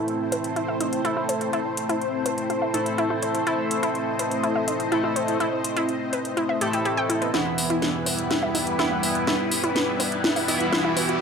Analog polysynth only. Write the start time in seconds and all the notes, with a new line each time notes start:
Already playing: A3 E4 A4
1.05 A3 E4 A4
1.53 A3 E4 A4
2.74 A3 E4 A4
3.47 A3 E4 A4
4.92 A3 E4 A4
5.40 A3 E4 A4
6.61 A3 E4 A4
7.34 E3 B3 E4
8.79 E3 B3 E4
9.27 E3 B3 E4
10.48 E3 B3 E4